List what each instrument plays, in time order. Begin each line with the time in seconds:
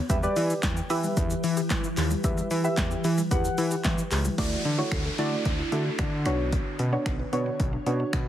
0.09 analog synth bass E2, ambient pad E3 E4 G4 B4, synth arpeggio sound G3, synth stab G4 B4 E5, kick, closed hi-hat, shaker
0.23 synth arpeggio sound G3, synth stab G4 B4 D5, shaker
0.36 analog synth bass E3, synth arpeggio sound E4, open hi-hat, shaker
0.50 shaker
0.63 analog synth bass E2, synth arpeggio sound G5, kick, snare, clap, closed hi-hat, shaker
0.77 synth arpeggio sound G5, shaker
0.90 analog synth bass E3, synth stab G4 B4 E5, synth arpeggio sound G4, open hi-hat, shaker
1.04 synth arpeggio sound G3, shaker
1.17 analog synth bass E2, kick, closed hi-hat, shaker
1.30 shaker
1.44 analog synth bass E3, synth arpeggio sound E4, open hi-hat, shaker
1.57 synth arpeggio sound G4, shaker
1.70 analog synth bass E3, synth arpeggio sound G5, kick, snare, clap, closed hi-hat, shaker
1.84 shaker
1.97 analog synth bass D#2, synth arpeggio sound G4, clap, open hi-hat, shaker
2.11 synth arpeggio sound G3, shaker
2.24 analog synth bass E2, synth arpeggio sound G3, synth stab G4 B4 E5, kick, closed hi-hat, shaker
2.38 synth arpeggio sound G3, shaker
2.51 analog synth bass E3, synth arpeggio sound E4, open hi-hat, shaker
2.64 synth stab G4 B4 E5, shaker
2.77 analog synth bass E2, synth arpeggio sound G5, kick, snare, clap, closed hi-hat, shaker
2.91 synth arpeggio sound G5, shaker
3.04 analog synth bass E3, synth arpeggio sound G4, open hi-hat, shaker
3.18 synth arpeggio sound G3, shaker
3.31 analog synth bass E2, synth stab G4 B4 F#5, kick, closed hi-hat, shaker
3.45 shaker
3.58 analog synth bass E3, synth arpeggio sound E4, open hi-hat, shaker
3.71 synth arpeggio sound G4, shaker
3.84 analog synth bass E3, synth arpeggio sound G5, kick, snare, clap, closed hi-hat, shaker
3.98 shaker
4.11 analog synth bass C#2, synth arpeggio sound G4, clap, open hi-hat, shaker
4.25 synth arpeggio sound G3, shaker
4.38 analog synth bass D2, ambient pad D3 D4 E4 F#4, synth stab A3 E4 F#4 D5, synth arpeggio sound A3, kick, closed hi-hat, crash, downlifter
4.65 analog synth bass D3, synth arpeggio sound D4, closed hi-hat
4.78 synth stab A3 E4 F#4 C#5, synth arpeggio sound E4
4.92 analog synth bass D2, synth arpeggio sound A4, finger snap, kick, closed hi-hat
5.05 synth arpeggio sound A4
5.18 analog synth bass D3, synth stab A3 E4 F#4 D5, synth arpeggio sound E4, closed hi-hat
5.32 synth arpeggio sound A3
5.45 analog synth bass D2, synth arpeggio sound A3, kick, closed hi-hat
5.59 synth arpeggio sound E4
5.72 analog synth bass D3, synth stab A3 E4 F#4 A4, synth arpeggio sound D4, closed hi-hat
5.86 synth arpeggio sound E4
5.99 analog synth bass D3, synth arpeggio sound A4, finger snap, kick, closed hi-hat
6.25 analog synth bass B1, synth stab B3 D4 F#4 C#5, ambient pad B3 C#5, finger snap, closed hi-hat
6.52 synth arpeggio sound B3, kick, closed hi-hat
6.79 analog synth bass B2, synth arpeggio sound C#4, closed hi-hat
6.92 synth stab B3 D4 F#4 C#5, synth arpeggio sound D4
7.06 analog synth bass B1, synth arpeggio sound B4, finger snap, kick, closed hi-hat
7.19 synth arpeggio sound B4
7.33 analog synth bass B2, synth stab B3 D4 F#4 C#5, synth arpeggio sound D4, closed hi-hat
7.46 synth arpeggio sound B3
7.59 analog synth bass B1, synth arpeggio sound B3, kick, closed hi-hat
7.73 synth arpeggio sound D4
7.86 analog synth bass B2, synth stab B3 D4 F#4 C#5, synth arpeggio sound C#4, closed hi-hat
8.00 synth arpeggio sound D4
8.13 analog synth bass B2, synth arpeggio sound B4, finger snap, kick, closed hi-hat